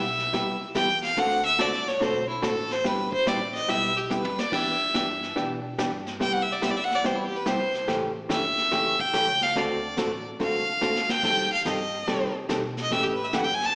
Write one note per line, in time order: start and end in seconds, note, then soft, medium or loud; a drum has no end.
0.00 0.32 B1 medium
0.00 0.62 E5 medium
0.19 snare soft
0.33 0.74 C2 medium
0.33 0.56 C3 medium
0.33 0.56 G3 medium
0.33 0.56 B3 medium
0.33 0.56 E4 medium
0.33 0.56 G4 medium
0.33 brush sweep medium
0.33 kick soft
0.33 snare soft
0.75 1.16 E2 medium
0.75 0.87 C3 medium
0.75 0.87 G3 medium
0.75 0.87 B3 medium
0.75 0.88 E4 medium
0.75 0.88 G4 medium
0.75 1.02 G5 medium
0.75 kick soft
0.75 snare medium
0.75 hi-hat pedal medium
1.02 1.20 F5 medium
1.02 snare soft
1.17 1.58 D2 medium
1.17 1.40 D3 medium
1.17 1.40 A3 medium
1.17 1.40 C4 medium
1.17 1.40 F#4 medium
1.17 1.40 A4 medium
1.17 1.45 F#5 loud
1.17 brush sweep medium
1.17 kick soft
1.17 snare soft
1.45 1.62 E5 loud
1.59 2.00 C2 medium
1.59 1.71 D3 medium
1.59 1.71 A3 medium
1.59 1.71 C4 medium
1.59 1.71 F#4 medium
1.59 1.71 A4 medium
1.59 1.89 D5 medium
1.59 kick soft
1.59 snare medium
1.59 hi-hat pedal medium
1.73 snare soft
1.87 2.04 C#5 medium
1.87 snare soft
2.00 2.42 B1 medium
2.00 2.23 D3 medium
2.00 2.24 A3 medium
2.00 2.24 C4 medium
2.00 2.24 F#4 medium
2.00 2.24 A4 medium
2.00 2.28 C5 medium
2.00 brush sweep medium
2.00 kick soft
2.00 snare soft
2.29 2.45 E4 medium
2.42 2.83 A1 medium
2.42 2.55 D3 medium
2.42 2.55 A3 medium
2.42 2.55 C4 medium
2.42 2.55 F#4 medium
2.42 2.55 A4 medium
2.42 2.73 A4 medium
2.42 kick soft
2.42 snare medium
2.42 hi-hat pedal medium
2.71 2.88 C5 loud
2.71 snare soft
2.84 3.25 G1 medium
2.84 3.07 G3 medium
2.84 3.07 B3 medium
2.84 3.08 E4 medium
2.84 3.08 G4 medium
2.84 3.12 B4 medium
2.84 brush sweep soft
2.84 kick soft
2.84 snare soft
3.12 3.29 C5 loud
3.12 kick medium
3.26 3.67 A1 medium
3.26 3.39 G3 medium
3.26 3.39 B3 medium
3.26 3.39 E4 medium
3.26 3.39 G4 medium
3.26 3.54 D5 medium
3.26 kick soft
3.26 snare medium
3.26 hi-hat pedal medium
3.55 3.71 D#5 medium
3.55 snare soft
3.68 4.09 B1 medium
3.68 3.91 G3 medium
3.68 3.91 B3 medium
3.68 3.92 E4 medium
3.68 3.92 G4 medium
3.68 3.98 E5 loud
3.68 brush sweep medium
3.68 kick soft
3.68 snare soft
3.97 4.13 G4 medium
4.10 4.51 D2 medium
4.10 4.22 G3 medium
4.10 4.23 B3 medium
4.10 4.23 E4 medium
4.10 4.23 G4 medium
4.10 4.41 B4 medium
4.10 hi-hat pedal medium
4.10 high tom soft
4.24 high tom medium
4.38 4.55 D5 medium
4.38 snare medium
4.52 4.93 E2 medium
4.52 4.75 E3 medium
4.52 4.75 B3 medium
4.52 4.76 D4 medium
4.52 4.76 G4 medium
4.52 5.37 E5 loud
4.52 brush sweep medium
4.52 kick medium
4.52 snare medium
4.52 crash medium
4.94 5.35 G2 medium
4.94 5.07 E3 medium
4.94 5.07 B3 medium
4.94 5.07 D4 medium
4.94 5.07 G4 medium
4.94 kick soft
4.94 snare medium
4.94 hi-hat pedal soft
5.23 snare soft
5.36 5.77 B2 medium
5.36 5.59 E3 medium
5.36 5.59 B3 medium
5.36 5.59 D4 medium
5.36 5.59 G4 medium
5.36 brush sweep medium
5.36 kick soft
5.36 snare soft
5.78 6.19 G2 medium
5.78 5.91 E3 medium
5.78 5.91 B3 medium
5.78 5.91 D4 medium
5.78 5.91 G4 medium
5.78 kick soft
5.78 snare medium
5.78 hi-hat pedal medium
6.06 snare soft
6.20 6.61 C2 medium
6.20 6.43 C3 medium
6.20 6.43 G3 medium
6.20 6.43 B3 medium
6.20 6.43 E4 medium
6.20 6.44 G4 medium
6.20 6.34 G5 medium
6.20 brush sweep medium
6.20 kick soft
6.20 snare soft
6.33 6.44 F#5 medium
6.42 6.54 E5 medium
6.53 6.64 D5 medium
6.62 7.03 D2 medium
6.62 6.74 C3 medium
6.62 6.74 G3 medium
6.62 6.74 B3 medium
6.62 6.74 E4 medium
6.62 6.75 G4 medium
6.62 6.72 E5 medium
6.62 kick soft
6.62 snare medium
6.62 hi-hat pedal medium
6.71 6.79 D5 medium
6.77 6.85 E5 medium
6.84 6.97 F#5 loud
6.90 snare soft
6.95 7.07 D5 medium
7.04 7.45 E2 medium
7.04 7.27 C3 medium
7.04 7.27 G3 medium
7.04 7.27 B3 medium
7.04 7.27 E4 medium
7.04 7.27 G4 medium
7.04 7.17 C5 medium
7.04 brush sweep medium
7.04 kick soft
7.04 snare soft
7.15 7.26 E4 medium
7.25 7.38 G4 medium
7.37 7.49 B4 medium
7.46 7.87 C2 medium
7.46 7.58 C3 medium
7.46 7.58 G3 medium
7.46 7.58 B3 medium
7.46 7.58 E4 medium
7.46 7.59 G4 medium
7.46 7.89 C5 medium
7.46 kick soft
7.46 snare medium
7.46 hi-hat pedal medium
7.74 snare soft
7.88 8.29 A1 medium
7.88 8.11 C#3 medium
7.88 8.11 E3 medium
7.88 8.11 A3 medium
7.88 8.11 C#4 medium
7.88 8.11 G4 medium
7.88 brush sweep medium
7.88 kick soft
7.88 snare soft
8.29 8.71 G1 medium
8.29 8.42 C#3 medium
8.29 8.42 E3 medium
8.29 8.42 A3 medium
8.29 8.42 C#4 medium
8.29 8.42 G4 medium
8.29 9.02 E5 loud
8.29 kick soft
8.29 snare medium
8.29 hi-hat pedal medium
8.58 snare soft
8.71 9.12 E2 medium
8.71 8.94 C#3 medium
8.71 8.95 E3 medium
8.71 8.95 A3 medium
8.71 8.95 C#4 medium
8.71 8.95 G4 medium
8.71 brush sweep medium
8.71 kick soft
8.71 snare soft
8.99 9.44 G5 loud
8.99 kick medium
9.13 9.54 C#2 medium
9.13 9.26 C#3 medium
9.13 9.26 E3 medium
9.13 9.26 A3 medium
9.13 9.26 C#4 medium
9.13 9.26 G4 medium
9.13 kick soft
9.13 snare medium
9.13 hi-hat pedal medium
9.41 9.59 F5 medium
9.41 snare soft
9.55 9.96 D2 medium
9.55 9.79 D3 medium
9.55 9.79 A3 medium
9.55 9.79 C4 medium
9.55 9.79 F#4 medium
9.55 9.79 A4 medium
9.55 10.27 D5 medium
9.55 brush sweep medium
9.55 kick soft
9.55 snare medium
9.97 10.38 A1 medium
9.97 10.10 D3 medium
9.97 10.10 A3 medium
9.97 10.10 C4 medium
9.97 10.10 F#4 medium
9.97 10.10 A4 medium
9.97 kick soft
9.97 snare medium
9.97 hi-hat pedal medium
10.39 10.80 C2 medium
10.39 10.62 D3 medium
10.39 10.63 A3 medium
10.39 10.63 C4 medium
10.39 10.63 F#4 medium
10.39 10.63 A4 medium
10.39 11.12 F5 medium
10.39 brush sweep soft
10.39 kick soft
10.39 snare soft
10.81 11.22 D2 medium
10.81 10.93 D3 medium
10.81 10.94 A3 medium
10.81 10.94 C4 medium
10.81 10.94 F#4 medium
10.81 10.94 A4 medium
10.81 hi-hat pedal medium
10.95 snare medium
11.09 11.52 G5 loud
11.09 snare medium
11.23 11.64 D#2 medium
11.23 11.46 C3 medium
11.23 11.46 D#3 medium
11.23 11.46 G3 medium
11.23 11.47 C4 medium
11.23 11.47 G4 medium
11.23 11.47 A4 medium
11.23 brush sweep medium
11.23 kick medium
11.23 snare medium
11.23 crash medium
11.53 11.65 F5 loud
11.65 12.06 G2 medium
11.65 11.77 C3 medium
11.65 11.77 D#3 medium
11.65 11.78 G3 medium
11.65 11.78 C4 medium
11.65 11.78 G4 medium
11.65 11.78 A4 medium
11.65 12.32 D#5 medium
11.65 kick soft
11.65 snare medium
11.65 hi-hat pedal medium
12.07 12.48 C3 medium
12.07 12.30 C3 medium
12.07 12.30 D#3 medium
12.07 12.30 G3 medium
12.07 12.30 C4 medium
12.07 12.30 G4 medium
12.07 12.30 A4 medium
12.07 brush sweep medium
12.07 kick soft
12.07 snare soft
12.49 12.90 B2 medium
12.49 12.61 C3 medium
12.49 12.61 D#3 medium
12.49 12.61 G3 medium
12.49 12.61 C4 medium
12.49 12.61 G4 medium
12.49 12.62 A4 medium
12.49 kick soft
12.49 snare medium
12.49 hi-hat pedal soft
12.77 snare soft
12.82 12.94 D#5 medium
12.91 13.31 A2 medium
12.91 13.14 C#3 medium
12.91 13.14 E3 medium
12.91 13.14 A3 medium
12.91 13.14 C#4 medium
12.91 13.14 G4 medium
12.91 13.05 E5 loud
12.91 brush sweep medium
12.91 kick soft
12.91 snare medium
13.03 13.14 G4 medium
13.13 13.26 B4 medium
13.24 13.36 E5 medium
13.33 13.73 F#2 medium
13.33 13.45 C#3 medium
13.33 13.45 E3 medium
13.33 13.45 A3 medium
13.33 13.45 C#4 medium
13.33 13.45 G4 medium
13.33 13.46 F#5 medium
13.33 kick soft
13.33 snare medium
13.33 hi-hat pedal medium
13.45 13.56 G5 medium
13.54 13.67 G#5 loud
13.61 snare soft
13.65 13.75 A5 loud